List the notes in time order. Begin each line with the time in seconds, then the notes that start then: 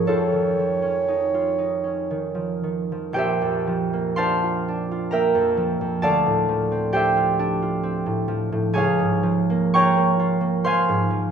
Already playing: F3 C#4 D#4 G#4 C#5 D#5 F5
0.07 F2 F4 A4 C#5
0.32 D#3
0.59 F3
0.82 C#4
1.08 D#4
1.34 F4
1.58 D#4
1.84 C#4
2.11 D#3
2.35 F3
2.63 D#3
2.92 F3
3.13 A#1 G4 C5 G5
3.18 E5
3.42 F2
3.67 F3
3.93 A#3
4.16 D4 C5 F5 A5 C6
4.43 F4
4.68 D4
4.91 F4
5.11 A#3 A#4 E5 G5 A#5
5.35 F2
5.57 F3
5.81 F2
6.02 D2 A4 D5 F5 A5
6.26 A2
6.49 F3
6.72 C4
6.93 D4 G4 C5 E5 G5
7.17 F4
7.39 D4
7.62 F4
7.83 C4
8.06 A2
8.28 F3
8.52 A2
8.73 C#2 G#4 C#5 G#5
8.77 F5
8.99 G#2
9.23 F3
9.50 A#3
9.74 F4 C#5 G5 A#5 C#6
9.96 A#3
10.19 F4
10.41 A#3
10.64 F3 C5 F5 G#5 C6
10.89 G#2
11.10 F3